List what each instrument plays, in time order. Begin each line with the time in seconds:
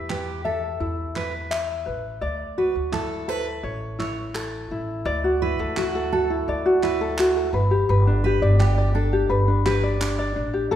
Already playing: upright bass E2, ukulele E4 G4 E5
0.10 steel-string acoustic guitar G4, ukulele B4, clap
0.45 steel-string acoustic guitar A4, ukulele E5
0.80 upright bass E2, ukulele E4
1.16 ukulele B4, steel-string acoustic guitar B4, clap
1.51 ukulele E5, clap
1.86 upright bass A1, ukulele B4
2.21 upright bass D2, ukulele D5
2.58 ukulele F#4, steel-string acoustic guitar B4
2.76 upright bass D2
2.92 ukulele E4, steel-string acoustic guitar A4, clap
3.28 ukulele A4, steel-string acoustic guitar B4
3.63 upright bass A1, ukulele C#5
3.99 ukulele E4, steel-string acoustic guitar C#5, clap
4.35 ukulele A4, clap
4.71 upright bass A1, ukulele E4
5.05 upright bass D2, ukulele D5
5.24 ukulele F#4
5.42 ukulele E4, steel-string acoustic guitar B4
5.59 upright bass D2, ukulele A4
5.77 steel-string acoustic guitar F#4, ukulele F#4, clap
5.95 ukulele A4
6.13 ukulele F#4, steel-string acoustic guitar A4
6.30 ukulele E4
6.48 upright bass D2, ukulele D5
6.66 ukulele F#4
6.83 ukulele E4, steel-string acoustic guitar B4, clap
7.01 ukulele A4
7.18 ukulele F#4, clap
7.36 ukulele A4
7.53 upright bass G1, ukulele B4
7.71 ukulele G4
7.89 upright bass G1, ukulele B4
8.07 ukulele D4
8.24 ukulele G4, steel-string acoustic guitar B4
8.42 upright bass G1, ukulele D5
8.60 ukulele D4, steel-string acoustic guitar G4, clap
8.78 ukulele D5
8.95 ukulele D4, steel-string acoustic guitar A4
9.13 ukulele G4
9.29 upright bass G1, ukulele B4
9.48 ukulele D4
9.65 ukulele G4, steel-string acoustic guitar B4, clap
9.83 ukulele D5
10.01 ukulele D4, clap
10.19 ukulele D5
10.36 upright bass A1, ukulele D4
10.54 ukulele G4
10.71 upright bass D2, ukulele A4